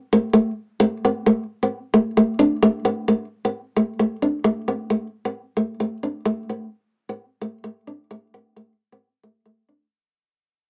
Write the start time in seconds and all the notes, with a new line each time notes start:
0.13 A3
0.33 A3
0.80 A3
1.05 B3
1.26 A3
1.63 B3
1.94 A3
2.17 A3
2.39 D4
2.63 A3
2.85 B3
3.08 A3
3.45 B3
3.76 A3
3.99 A3
4.22 D4
4.44 A3
4.68 B3
4.90 A3
5.25 B3
5.57 A3
5.80 A3
6.03 D4
6.25 A3
6.49 B3
7.09 B3
7.42 A3
7.64 A3
7.87 D4
8.11 A3
8.34 B3
8.56 A3
8.92 B3
9.23 A3
9.45 A3
9.69 D4